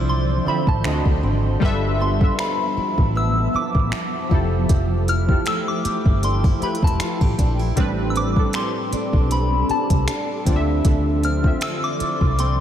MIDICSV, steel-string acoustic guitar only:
0, 0, Header, 1, 2, 480
1, 0, Start_track
1, 0, Tempo, 769231
1, 1010, Time_signature, 4, 2, 24, 8
1, 7864, End_track
2, 0, Start_track
2, 0, Title_t, "Steel-string acoustic guitar"
2, 0, Program_c, 0, 25
2, 0, Note_on_c, 0, 50, 78
2, 0, Note_on_c, 0, 53, 60
2, 0, Note_on_c, 0, 64, 54
2, 48, Note_on_c, 0, 60, 61
2, 282, Note_off_c, 0, 53, 0
2, 289, Note_on_c, 0, 53, 57
2, 527, Note_off_c, 0, 50, 0
2, 529, Note_on_c, 0, 50, 88
2, 581, Note_off_c, 0, 53, 0
2, 581, Note_off_c, 0, 60, 0
2, 581, Note_off_c, 0, 64, 0
2, 769, Note_on_c, 0, 60, 55
2, 1061, Note_off_c, 0, 60, 0
2, 1250, Note_on_c, 0, 59, 58
2, 1489, Note_on_c, 0, 53, 61
2, 1730, Note_on_c, 0, 64, 71
2, 1749, Note_off_c, 0, 50, 0
2, 1961, Note_off_c, 0, 59, 0
2, 1968, Note_on_c, 0, 59, 60
2, 2207, Note_off_c, 0, 53, 0
2, 2210, Note_on_c, 0, 53, 55
2, 2447, Note_off_c, 0, 64, 0
2, 2450, Note_on_c, 0, 64, 70
2, 2688, Note_off_c, 0, 53, 0
2, 2690, Note_on_c, 0, 53, 81
2, 2741, Note_off_c, 0, 59, 0
2, 2922, Note_off_c, 0, 53, 0
2, 2930, Note_on_c, 0, 53, 79
2, 2949, Note_off_c, 0, 64, 0
2, 3169, Note_on_c, 0, 64, 60
2, 3407, Note_on_c, 0, 57, 61
2, 3648, Note_on_c, 0, 67, 68
2, 3885, Note_off_c, 0, 64, 0
2, 3888, Note_on_c, 0, 62, 61
2, 4018, Note_off_c, 0, 62, 0
2, 4018, Note_on_c, 0, 64, 51
2, 4127, Note_off_c, 0, 57, 0
2, 4129, Note_on_c, 0, 57, 54
2, 4366, Note_off_c, 0, 67, 0
2, 4369, Note_on_c, 0, 65, 74
2, 4499, Note_off_c, 0, 65, 0
2, 4499, Note_on_c, 0, 67, 58
2, 4606, Note_off_c, 0, 64, 0
2, 4609, Note_on_c, 0, 62, 59
2, 4738, Note_off_c, 0, 62, 0
2, 4738, Note_on_c, 0, 64, 51
2, 4849, Note_on_c, 0, 45, 78
2, 4850, Note_off_c, 0, 53, 0
2, 4901, Note_off_c, 0, 64, 0
2, 4901, Note_off_c, 0, 67, 0
2, 5086, Note_off_c, 0, 57, 0
2, 5089, Note_on_c, 0, 60, 54
2, 5329, Note_on_c, 0, 55, 59
2, 5570, Note_on_c, 0, 62, 68
2, 5808, Note_off_c, 0, 60, 0
2, 5811, Note_on_c, 0, 60, 59
2, 6043, Note_off_c, 0, 55, 0
2, 6050, Note_on_c, 0, 55, 56
2, 6288, Note_off_c, 0, 62, 0
2, 6290, Note_on_c, 0, 62, 70
2, 6529, Note_on_c, 0, 50, 78
2, 6581, Note_off_c, 0, 45, 0
2, 6582, Note_off_c, 0, 55, 0
2, 6767, Note_off_c, 0, 50, 0
2, 6770, Note_on_c, 0, 50, 78
2, 6789, Note_off_c, 0, 60, 0
2, 7010, Note_on_c, 0, 60, 60
2, 7029, Note_off_c, 0, 62, 0
2, 7251, Note_on_c, 0, 53, 60
2, 7489, Note_on_c, 0, 64, 70
2, 7723, Note_off_c, 0, 60, 0
2, 7731, Note_on_c, 0, 60, 64
2, 7864, Note_off_c, 0, 50, 0
2, 7864, Note_off_c, 0, 53, 0
2, 7864, Note_off_c, 0, 60, 0
2, 7864, Note_off_c, 0, 64, 0
2, 7864, End_track
0, 0, End_of_file